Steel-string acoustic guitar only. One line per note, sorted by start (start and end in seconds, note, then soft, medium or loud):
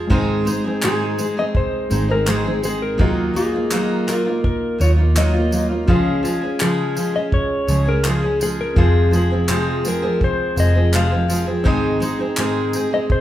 0.00 0.11 F4 medium
0.00 0.11 G#4 medium
0.10 0.46 G#2 medium
0.10 0.46 D#3 loud
0.10 0.44 G#3 loud
0.10 0.45 C4 loud
0.10 0.46 D#4 loud
0.10 0.47 G#4 loud
0.45 0.64 G#3 medium
0.45 0.64 C4 medium
0.45 0.64 D#4 medium
0.45 0.63 G#4 medium
0.64 0.83 G#3 medium
0.64 0.83 C4 medium
0.64 0.83 D#4 medium
0.64 0.83 G#4 medium
0.83 1.19 G#2 loud
0.83 1.19 D#3 medium
0.83 1.16 G#3 loud
0.83 1.18 C4 medium
0.83 1.19 D#4 medium
0.83 1.20 G#4 loud
1.18 1.36 G#3 medium
1.18 1.37 C4 medium
1.18 1.37 D#4 medium
1.18 1.36 G#4 medium
1.37 1.89 G#3 soft
1.37 1.90 C4 medium
1.37 1.91 D#4 medium
1.37 1.91 G#4 medium
1.90 2.09 G#3 medium
1.90 2.09 C4 medium
1.90 2.08 D#4 medium
1.90 2.07 G#4 medium
2.08 2.26 G#3 soft
2.08 2.27 C4 medium
2.08 2.27 D#4 medium
2.08 2.27 G#4 medium
2.27 2.45 G#2 medium
2.27 2.45 D#3 medium
2.27 2.45 G#3 medium
2.27 2.45 C4 medium
2.27 2.44 D#4 medium
2.27 2.43 G#4 medium
2.44 2.61 G#3 medium
2.44 2.63 C4 medium
2.44 2.63 D#4 medium
2.44 2.63 G#4 medium
2.62 2.99 G#3 medium
2.62 2.99 C4 medium
2.62 2.98 D#4 medium
2.62 3.00 G#4 medium
2.98 3.35 D#3 medium
2.98 3.32 F#3 medium
2.98 3.34 A#3 medium
2.98 3.35 D#4 medium
2.98 3.36 F4 medium
3.34 3.53 F#3 medium
3.34 3.53 A#3 medium
3.34 3.53 D#4 medium
3.34 3.51 F4 medium
3.52 3.71 A#3 soft
3.52 3.71 D#4 medium
3.52 3.71 F4 medium
3.70 4.07 D#3 medium
3.70 4.06 F#3 medium
3.70 4.07 A#3 medium
3.70 4.08 D#4 loud
3.70 4.08 F4 loud
4.07 4.25 F#3 medium
4.07 4.26 A#3 medium
4.07 4.26 D#4 medium
4.07 4.24 F4 medium
4.26 4.78 A#3 soft
4.26 4.79 D#4 medium
4.26 4.80 F4 medium
4.78 4.97 F#3 medium
4.78 4.98 A#3 medium
4.78 4.97 D#4 medium
4.78 4.95 F4 medium
4.96 5.15 A#3 soft
4.96 5.16 D#4 soft
4.96 5.15 F4 medium
5.16 5.34 D#3 medium
5.16 5.34 F#3 medium
5.16 5.34 A#3 medium
5.16 5.34 D#4 medium
5.16 5.31 F4 medium
5.33 5.53 D#4 medium
5.33 5.51 F4 medium
5.37 5.51 A#3 soft
5.51 5.70 F#3 medium
5.51 5.70 A#3 medium
5.51 5.69 D#4 medium
5.51 5.67 F4 medium
5.69 5.89 A#3 soft
5.69 5.88 D#4 soft
5.69 5.87 F4 medium
5.87 6.24 C#3 medium
5.87 6.22 F3 loud
5.87 6.23 G#3 medium
5.87 6.24 C#4 loud
5.87 6.25 G#4 loud
6.23 6.42 F3 medium
6.23 6.42 G#3 medium
6.23 6.42 C#4 medium
6.23 6.40 G#4 medium
6.41 6.61 G#3 soft
6.41 6.61 C#4 soft
6.41 6.60 G#4 medium
6.61 6.97 C#3 medium
6.61 6.94 F3 medium
6.61 6.96 G#3 medium
6.61 6.97 C#4 medium
6.61 6.98 G#4 medium
6.95 7.14 F3 medium
6.95 7.15 G#3 medium
6.95 7.14 C#4 medium
6.95 7.12 G#4 medium
7.14 7.67 G#3 soft
7.14 7.69 C#4 medium
7.14 7.68 G#4 medium
7.67 7.86 F3 medium
7.67 7.86 G#3 medium
7.67 7.86 C#4 medium
7.67 7.84 G#4 medium
7.86 8.05 G#3 soft
7.86 8.05 C#4 medium
7.86 8.04 G#4 medium
8.04 8.23 C#3 medium
8.04 8.23 F3 medium
8.04 8.23 G#3 medium
8.04 8.23 C#4 medium
8.04 8.21 G#4 medium
8.22 8.40 G#3 soft
8.22 8.41 C#4 medium
8.22 8.40 G#4 medium
8.40 8.76 F3 medium
8.40 8.76 G#3 medium
8.40 8.77 C#4 medium
8.40 8.77 G#4 medium
8.76 9.12 F2 medium
8.76 9.13 C3 medium
8.76 9.10 F3 medium
8.76 9.11 G#3 medium
8.76 9.13 C4 medium
8.76 9.14 G#4 loud
9.11 9.30 F3 medium
9.11 9.31 G#3 medium
9.11 9.30 C4 medium
9.11 9.29 G#4 medium
9.30 9.47 F3 soft
9.30 9.48 G#3 medium
9.30 9.49 C4 medium
9.30 9.49 G#4 medium
9.48 9.84 F2 medium
9.48 9.85 C3 medium
9.48 9.83 F3 loud
9.48 9.84 G#3 loud
9.48 9.85 C4 medium
9.48 9.86 G#4 loud
9.84 10.03 F3 medium
9.84 10.03 G#3 medium
9.84 10.02 C4 medium
9.84 10.01 G#4 medium
10.02 10.55 F3 soft
10.02 10.56 G#3 medium
10.02 10.57 C4 medium
10.02 10.57 G#4 medium
10.56 10.75 F3 medium
10.56 10.75 G#3 medium
10.56 10.74 C4 medium
10.56 10.73 G#4 medium
10.74 10.93 F3 soft
10.74 10.93 G#3 soft
10.74 10.93 C4 medium
10.74 10.93 G#4 medium
10.92 11.11 F2 medium
10.92 11.11 C3 medium
10.92 11.12 F3 medium
10.92 11.11 G#3 medium
10.92 11.10 C4 medium
10.92 11.09 G#4 medium
11.10 11.27 F3 soft
11.10 11.28 G#3 medium
11.10 11.29 C4 medium
11.10 11.29 G#4 medium
11.28 11.47 F3 medium
11.28 11.47 G#3 medium
11.28 11.46 C4 medium
11.28 11.45 G#4 medium
11.46 11.65 F3 soft
11.46 11.64 G#3 soft
11.46 11.65 C4 medium
11.46 11.65 G#4 medium
11.64 12.01 G#2 medium
11.64 12.01 D#3 loud
11.64 11.99 G#3 loud
11.64 12.00 C4 loud
11.64 12.01 D#4 loud
11.64 12.02 G#4 loud
12.00 12.19 G#3 medium
12.00 12.19 C4 medium
12.00 12.18 D#4 medium
12.00 12.17 G#4 medium
12.19 12.37 G#3 soft
12.19 12.37 C4 medium
12.19 12.38 D#4 medium
12.19 12.37 G#4 medium
12.37 12.73 G#2 medium
12.37 12.73 D#3 loud
12.37 12.72 G#3 medium
12.37 12.73 C4 loud
12.37 12.74 D#4 loud
12.37 12.75 G#4 loud
12.73 12.91 G#3 medium
12.73 12.92 C4 medium
12.73 12.91 D#4 medium
12.73 12.90 G#4 medium
12.91 13.21 G#3 soft
12.91 13.21 C4 medium
12.91 13.21 D#4 medium
12.91 13.21 G#4 medium